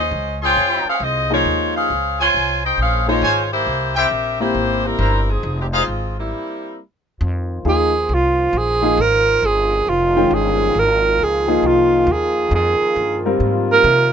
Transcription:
Already playing: D#2
0.00 C#4 G#4 C5 D#5
0.11 C#2
0.41 C#4 F4 G#4 C5 C#5 G5 C6
0.57 F2
0.85 C#4 C5 F5, muted upright bass stroke
0.89 G#4
1.00 C2 C4 F4 G#4 D#5
1.30 F3 G#3 A#3 D#4 F4 G#4 C5 C#5
1.45 D#2
1.76 C#4 G#4 C5 F5
1.90 C#2
2.19 F4 C5 C#5 G#5
2.34 C2
2.65 D#4 G#4 C5 G5
2.78 A#1 C#4 G#4 C5 F5
3.07 F3 G#3 A#3 D#4 F4 G#4 C5 C#5
3.22 G#1 F4 C5 C#5 G#5
3.52 A#3 E4 G4 C5
3.66 C2
3.95 C4 E4 G4 A#4 C5 E5 G5
4.10 A#1
4.40 A#3 C4 E4 G4 C5
4.55 G#1
4.85 G3 C4 E4 A#4
4.99 G1 E4 A#4 C5 A#5
5.29 F3 C4 D#4 G#4
5.43 F1
5.61 D#3 G#3 C4 G4
5.72 D#4 G#4 C5 F5
5.76 G#3 C4 D#4 F4
5.88 G#1
6.19 G3 A#3 C4 E4
7.21 F2 D#3 F3 F4 C5
7.65 D#2 F3 A#3 D#4 G#4
8.09 C2
8.14 F4
8.53 A#1
8.58 G#4
8.82 F3 A#3 D#4 G#4
8.97 G#1 A#4
9.42 G1 G#4
9.87 F1 F4
10.16 D#3 G#3 C#4 G5
10.31 G1
10.35 G#4
10.74 G#1 A#3
10.79 A#4
11.19 C#2
11.24 G#4
11.47 F3 A#3 D#4 G#4
11.63 C2
11.67 F4
12.07 D#2
12.13 G#4
12.51 F2
12.55 G#4
12.81 muted upright bass stroke
12.96 G2
13.26 G3 C4 F4 A#4
13.40 G#2
13.73 A#4
13.84 C3

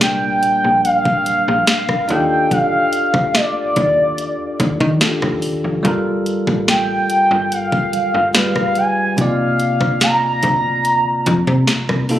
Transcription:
Already playing: C2 A#2 G3 D4 A#4
0.01 G5, snare, closed hi-hat
0.43 A#1, closed hi-hat
0.64 A#1
0.84 F5, closed hi-hat
1.05 kick
1.26 A#1, closed hi-hat
1.48 A#1
1.67 F5, snare, closed hi-hat
1.89 kick, cross-stick
2.08 D#2 D4 D#4 F4 G4 G5, closed hi-hat
2.12 A4
2.51 F5, kick, closed hi-hat
2.93 closed hi-hat
3.14 D2, kick
3.35 D5, snare, closed hi-hat
3.76 D#2, kick, closed hi-hat
4.18 closed hi-hat
4.60 D#2, kick, closed hi-hat
4.80 D#3, kick
5.01 D#2 D#3 D4 F4 G4 A4, snare, closed hi-hat
5.22 D#2, kick, cross-stick
5.42 open hi-hat
5.64 F1
5.83 G1 G3 F4 A4, kick, closed hi-hat
5.88 A#4
6.26 closed hi-hat
6.47 A1, kick
6.68 G5, snare, closed hi-hat
7.10 G1, closed hi-hat
7.31 G1
7.52 F5, closed hi-hat
7.72 kick
7.93 G1, closed hi-hat
8.14 G1
8.34 G1 G3 F4 G#4 B4 F5, snare, closed hi-hat
8.56 kick, cross-stick
8.75 G#5, closed hi-hat
9.16 C2 C3 A#3 D#4 F4 F5, kick, closed hi-hat
9.21 D5
9.60 closed hi-hat
9.81 D2, kick
10.01 A#5, snare, closed hi-hat
10.43 D2, kick, closed hi-hat
10.85 closed hi-hat
11.26 F2, kick, closed hi-hat
11.47 C3, kick
11.67 C2, snare, closed hi-hat
11.89 C2, kick, cross-stick
12.09 C3 A#3 D#4 F4 A4, open hi-hat

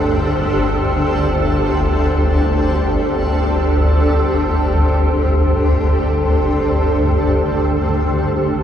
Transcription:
Already playing: G1 D2 D4 G4 A4 C5
8.37 G4

